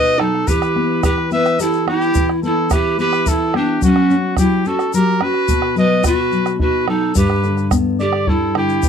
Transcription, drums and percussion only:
0.20 bombo rim
0.35 bombo rim
0.48 bombo rim, bombo low, shaker
0.62 bombo rim, shaker
0.76 bombo rim
1.03 bombo rim, bombo low, shaker
1.18 bombo rim
1.31 bombo rim, shaker
1.45 bombo rim, shaker
1.60 shaker
1.73 shaker
1.88 bombo rim
2.02 shaker
2.14 bombo low, shaker
2.29 bombo rim
2.43 shaker
2.70 bombo rim, bombo low, shaker
2.99 shaker
3.12 bombo rim, shaker
3.26 bombo low, shaker
3.54 bombo rim
3.68 bombo rim
3.82 bombo low, shaker
3.96 bombo rim
4.10 shaker
4.37 bombo rim, bombo low, shaker
4.65 shaker
4.79 bombo rim, shaker
4.93 shaker
5.21 bombo rim
5.34 bombo rim
5.48 bombo low, shaker
5.62 bombo rim
5.77 shaker
6.04 bombo rim, bombo low, shaker
6.32 shaker
6.46 bombo rim, shaker
6.60 bombo low
6.88 bombo rim
7.02 bombo rim
7.15 bombo rim, bombo low, shaker
7.30 bombo rim
7.44 bombo rim, shaker
7.57 bombo rim, shaker
7.71 bombo rim, bombo low, shaker
8.00 shaker
8.13 bombo rim
8.27 bombo rim, bombo low
8.55 bombo rim
8.69 shaker
8.83 bombo low, shaker

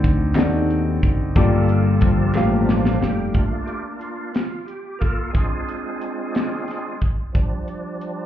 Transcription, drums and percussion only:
0.04 kick, closed hi-hat
0.35 snare, clap, closed hi-hat
0.70 closed hi-hat
1.03 kick, closed hi-hat
1.36 kick, closed hi-hat
1.69 closed hi-hat
2.01 kick, closed hi-hat
2.34 snare, clap
2.69 snare
2.85 snare
3.02 snare
3.34 kick, closed hi-hat
3.68 closed hi-hat
4.01 closed hi-hat
4.35 snare, closed hi-hat
4.68 closed hi-hat
5.01 kick, closed hi-hat
5.35 kick, closed hi-hat
5.69 closed hi-hat
6.01 closed hi-hat
6.35 snare, closed hi-hat
6.68 snare, closed hi-hat
7.01 kick, closed hi-hat
7.35 kick, closed hi-hat
7.68 closed hi-hat
8.01 closed hi-hat

